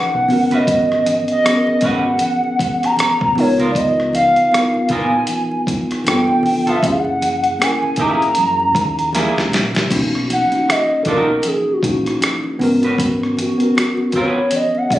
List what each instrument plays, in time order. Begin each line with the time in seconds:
Already playing: tine electric piano C#4 D#4 F#4 A#4, soft synth lead F#5
0.14 fingered electric bass B1
0.28 fingered electric bass G#1, tine electric piano B3 C#4 F#4, open hi-hat, high conga, low conga
0.33 tine electric piano A#4
0.51 clean electric guitar C#4 F#4 B4, soft synth lead D#5, closed hi-hat, low conga
0.67 kick, closed hi-hat, muted conga
0.89 cross-stick, muted conga
1.06 closed hi-hat, high conga
1.28 closed hi-hat
1.32 soft synth lead D#5
1.44 tine electric piano B3 C#4 F#4, muted clean electric guitar stroke, cross-stick, closed hi-hat, muted conga
1.48 tine electric piano G#4
1.55 tine electric piano A#4
1.67 muted fingered electric bass stroke, muted conga
1.81 fingered electric bass G#1, clean electric guitar C#4 F#4, kick, closed hi-hat, low conga
1.85 clean electric guitar B4, soft synth lead F#5
2.19 closed hi-hat, muted conga, high conga
2.44 muted conga
2.59 kick, closed hi-hat, high conga
2.83 soft synth lead A#5, cross-stick, closed hi-hat
2.97 muted fingered electric bass stroke, cross-stick, closed hi-hat, muted conga, high conga
3.20 fingered electric bass A#1, kick, muted conga
3.35 fingered electric bass C#2, tine electric piano B3 D#4 F4, soft synth lead C#5, open hi-hat, high conga, low conga
3.41 tine electric piano A#4
3.58 clean electric guitar B3 F4 A#4, closed hi-hat, low conga
3.71 soft synth lead D5, kick, muted conga
3.76 soft synth lead D#5, closed hi-hat
3.97 cross-stick, muted conga
4.13 soft synth lead F5, closed hi-hat, high conga
4.36 closed hi-hat
4.51 tine electric piano B3 D#4 E4, muted clean electric guitar stroke, cross-stick, closed hi-hat, muted conga
4.56 tine electric piano A#4
4.61 tine electric piano F4
4.74 muted fingered electric bass stroke, muted conga
4.89 fingered electric bass A#1, clean electric guitar B3 F4 A#4, soft synth lead G#5, kick, closed hi-hat, low conga
5.27 closed hi-hat, high conga
5.51 muted conga
5.67 kick, closed hi-hat, high conga
5.91 cross-stick, closed hi-hat
6.04 fingered electric bass G1, tine electric piano A#3 D4 F4, soft synth lead G5, cross-stick, closed hi-hat, muted conga, high conga
6.10 tine electric piano B3 A4
6.28 fingered electric bass F1, muted conga
6.43 open hi-hat, high conga, low conga
6.66 fingered electric bass F1, clean electric guitar B3 F4 A4, soft synth lead E5, closed hi-hat, low conga
6.82 fingered electric bass F#1, tine electric piano A#3 C#4 E4, soft synth lead F#5, kick, closed hi-hat, muted conga
6.87 tine electric piano G4
6.93 tine electric piano G#4
7.05 muted conga
7.21 closed hi-hat, high conga
7.44 closed hi-hat
7.58 tine electric piano A#3 C#4 E4, muted clean electric guitar stroke, cross-stick, closed hi-hat, muted conga
7.63 tine electric piano A#4, soft synth lead G#5
7.82 muted fingered electric bass stroke, muted conga
7.96 fingered electric bass G#1, clean electric guitar A#3 E4, kick, closed hi-hat, high conga, low conga
8.01 clean electric guitar G#4, soft synth lead A#5
8.22 closed hi-hat
8.35 fingered electric bass F#2, closed hi-hat, high conga
8.60 muted conga
8.75 fingered electric bass D#2, kick, closed hi-hat, high conga
8.99 closed hi-hat
9.13 clean electric guitar A#3 E4 G#4, snare, closed hi-hat, high conga
9.36 fingered electric bass C#2, snare, muted conga
9.52 fingered electric bass A#1, snare, closed hi-hat, high conga, low conga
9.74 snare, closed hi-hat, low conga
9.90 fingered electric bass B1, tine electric piano A#3 C#4 D#4, kick, closed hi-hat, crash, muted conga
9.95 tine electric piano F#4
10.13 cross-stick, muted conga
10.29 soft synth lead F#5, closed hi-hat, high conga
10.51 tine electric piano A#3 C#4 D#4, muted fingered electric bass stroke, closed hi-hat
10.55 tine electric piano F#4
10.68 soft synth lead D#5, muted clean electric guitar stroke, cross-stick, closed hi-hat, muted conga
10.91 muted conga
11.03 fingered electric bass B1, clean electric guitar D#4, soft synth lead A4, kick, closed hi-hat
11.07 clean electric guitar F#4 A#4, soft synth lead A#4, low conga
11.43 closed hi-hat, muted conga, high conga
11.47 soft synth lead G#4
11.73 soft synth lead F#4
11.82 fingered electric bass A#1, tine electric piano A#3 C#4 D#4, kick, closed hi-hat, high conga
11.86 tine electric piano E4
11.93 tine electric piano F#4
12.06 cross-stick, closed hi-hat
12.21 cross-stick, closed hi-hat, high conga
12.44 muted conga
12.59 fingered electric bass G#1, tine electric piano B3 C#4 F#4, open hi-hat, high conga, low conga
12.63 tine electric piano A#4
12.82 clean electric guitar C#4 F#4 B4, closed hi-hat, low conga
12.98 kick, closed hi-hat
13.20 cross-stick, muted conga
13.37 soft synth lead F#4, closed hi-hat, high conga
13.58 tine electric piano B3 C#4 F#4, muted fingered electric bass stroke, closed hi-hat
13.62 tine electric piano A#4
13.75 muted clean electric guitar stroke, cross-stick, closed hi-hat, muted conga
13.97 muted conga
14.12 clean electric guitar C#4, kick, closed hi-hat, low conga
14.16 clean electric guitar F#4 B4, soft synth lead C#5
14.51 closed hi-hat, high conga
14.55 soft synth lead D#5
14.75 soft synth lead F#5, muted conga
14.90 fingered electric bass B1, tine electric piano A#3 C#4 F#4, soft synth lead C#5, kick, closed hi-hat, high conga
14.95 tine electric piano G#4